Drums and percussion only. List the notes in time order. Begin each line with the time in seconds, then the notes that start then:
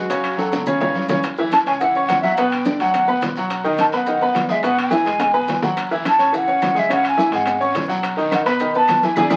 0.10 high bongo, high conga, high timbale, long guiro, maracas
0.24 high bongo, high conga, high timbale, claves, maracas
0.38 high bongo, high conga, low timbale, short guiro, maracas
0.52 high bongo, high conga, high timbale, short guiro, maracas
0.66 low bongo, high conga, low conga, long guiro, claves, maracas
0.80 low bongo, high conga, low timbale, maracas
0.95 high conga, low timbale, short guiro, maracas
1.08 low bongo, high conga, low timbale, short guiro, maracas
1.23 high bongo, high conga, high timbale, long guiro, maracas
1.37 high bongo, high conga, maracas
1.52 high bongo, high conga, high timbale, low timbale, short guiro, maracas
1.66 high conga, high timbale, short guiro, maracas
1.80 high bongo, high conga, long guiro, maracas
1.95 high bongo, high conga, maracas
2.08 high bongo, low bongo, high conga, high timbale, low timbale, short guiro, maracas
2.23 high bongo, high conga, short guiro, maracas
2.37 high bongo, high conga, high timbale, long guiro, maracas
2.52 high bongo, high conga, high timbale, maracas
2.65 high bongo, high conga, low timbale, short guiro, maracas
2.79 high conga, high timbale, short guiro, maracas
2.94 high bongo, high conga, low conga, high timbale, maracas
3.08 high bongo, high conga, low conga, maracas
3.22 high bongo, low bongo, high conga, high timbale, low timbale, short guiro, maracas
3.35 high bongo, short guiro, maracas
3.50 high bongo, high conga, high timbale, long guiro, maracas
3.64 high bongo, high conga, maracas
3.78 high bongo, high conga, high timbale, low timbale, short guiro, maracas
3.92 high conga, high timbale, short guiro, maracas
4.06 high bongo, high conga, long guiro, maracas
4.21 high bongo, high conga, maracas
4.34 high bongo, low bongo, high conga, high timbale, low timbale, short guiro, maracas
4.49 high bongo, high conga, short guiro, maracas
4.63 high bongo, high timbale, long guiro, maracas
4.77 high bongo, high conga, high timbale, maracas
4.91 high bongo, high conga, low timbale, short guiro, maracas
5.05 high conga, high timbale, short guiro, maracas
5.19 high bongo, high conga, low conga, high timbale, maracas
5.34 high conga, low conga, maracas
5.48 low bongo, high conga, high timbale, low timbale, short guiro, maracas
5.62 low bongo, short guiro, maracas
5.77 high bongo, high conga, high timbale, long guiro, claves, maracas
5.91 high bongo, high conga, maracas
6.05 high bongo, high conga, high timbale, low timbale, short guiro, claves, maracas
6.19 high conga, high timbale, short guiro, maracas
6.34 high bongo, high conga, maracas
6.47 high bongo, high conga, maracas
6.62 high bongo, low bongo, high conga, high timbale, low timbale, short guiro, claves, maracas
6.76 high bongo, high conga, short guiro, maracas
6.90 high bongo, high conga, high timbale, long guiro, maracas
7.04 high bongo, high conga, high timbale, claves, maracas
7.18 high bongo, high conga, low timbale, short guiro, maracas
7.32 high conga, high timbale, short guiro, maracas
7.46 high bongo, high conga, low conga, high timbale, claves, maracas
7.61 high bongo, high conga, maracas
7.75 high bongo, low bongo, high conga, high timbale, low timbale, short guiro, maracas
7.89 high bongo, short guiro, maracas
8.03 high bongo, high conga, high timbale, long guiro, claves, maracas
8.17 high bongo, high conga, maracas
8.31 high bongo, high conga, high timbale, low timbale, short guiro, claves, maracas
8.46 high conga, high timbale, short guiro, maracas
8.60 high bongo, high conga, maracas
8.74 high bongo, high conga, maracas
8.88 high bongo, low bongo, high conga, high timbale, low timbale, short guiro, claves, maracas
9.03 high bongo, high conga, short guiro, maracas
9.16 low bongo, high conga, high timbale, long guiro, claves, maracas
9.30 low bongo, high conga, high timbale, long guiro, claves, maracas